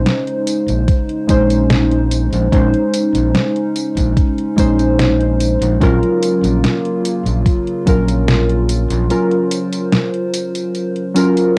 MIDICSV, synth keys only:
0, 0, Header, 1, 2, 480
1, 0, Start_track
1, 0, Key_signature, -5, "minor"
1, 0, Tempo, 821918
1, 1475, Time_signature, 4, 2, 24, 8
1, 6763, End_track
2, 0, Start_track
2, 0, Title_t, "Synth keys"
2, 0, Program_c, 0, 88
2, 0, Control_c, 0, 64, 127
2, 0, Note_on_c, 0, 56, 93
2, 0, Note_on_c, 0, 61, 87
2, 0, Note_on_c, 0, 63, 82
2, 0, Note_on_c, 0, 72, 109
2, 722, Note_off_c, 0, 56, 0
2, 725, Note_off_c, 0, 61, 0
2, 728, Note_off_c, 0, 63, 0
2, 731, Note_off_c, 0, 72, 0
2, 744, Note_on_c, 0, 56, 88
2, 749, Note_on_c, 0, 61, 84
2, 755, Note_on_c, 0, 63, 82
2, 762, Note_on_c, 0, 72, 100
2, 1441, Note_off_c, 0, 56, 0
2, 1444, Note_off_c, 0, 61, 0
2, 1447, Note_off_c, 0, 63, 0
2, 1450, Note_off_c, 0, 72, 0
2, 1470, Note_on_c, 0, 56, 79
2, 1473, Note_on_c, 0, 61, 73
2, 1475, Note_on_c, 0, 63, 78
2, 1479, Note_on_c, 0, 72, 89
2, 1585, Note_off_c, 0, 56, 0
2, 1586, Note_off_c, 0, 61, 0
2, 1588, Note_off_c, 0, 63, 0
2, 1589, Note_off_c, 0, 72, 0
2, 2665, Note_on_c, 0, 56, 100
2, 2671, Note_on_c, 0, 61, 93
2, 2676, Note_on_c, 0, 63, 92
2, 2682, Note_on_c, 0, 72, 108
2, 3362, Note_off_c, 0, 56, 0
2, 3365, Note_off_c, 0, 61, 0
2, 3367, Note_off_c, 0, 63, 0
2, 3370, Note_off_c, 0, 72, 0
2, 3387, Note_on_c, 0, 54, 98
2, 3393, Note_on_c, 0, 61, 86
2, 3398, Note_on_c, 0, 65, 91
2, 3402, Control_c, 0, 64, 0
2, 3404, Note_on_c, 0, 70, 106
2, 3498, Control_c, 0, 64, 127
2, 4563, Note_off_c, 0, 54, 0
2, 4566, Note_off_c, 0, 61, 0
2, 4568, Note_off_c, 0, 65, 0
2, 4571, Note_off_c, 0, 70, 0
2, 4589, Note_on_c, 0, 54, 87
2, 4594, Note_on_c, 0, 61, 82
2, 4600, Note_on_c, 0, 65, 82
2, 4606, Note_on_c, 0, 70, 97
2, 5284, Note_off_c, 0, 54, 0
2, 5286, Note_off_c, 0, 61, 0
2, 5289, Note_off_c, 0, 65, 0
2, 5292, Note_off_c, 0, 70, 0
2, 5313, Note_on_c, 0, 54, 82
2, 5316, Note_on_c, 0, 61, 78
2, 5319, Note_on_c, 0, 65, 75
2, 5322, Note_on_c, 0, 70, 89
2, 5426, Note_off_c, 0, 54, 0
2, 5428, Note_off_c, 0, 61, 0
2, 5430, Note_off_c, 0, 65, 0
2, 5431, Note_off_c, 0, 70, 0
2, 6507, Note_on_c, 0, 54, 96
2, 6513, Note_on_c, 0, 61, 97
2, 6518, Note_on_c, 0, 65, 93
2, 6525, Note_on_c, 0, 70, 105
2, 6763, Note_off_c, 0, 54, 0
2, 6763, Note_off_c, 0, 61, 0
2, 6763, Note_off_c, 0, 65, 0
2, 6763, Note_off_c, 0, 70, 0
2, 6763, End_track
0, 0, End_of_file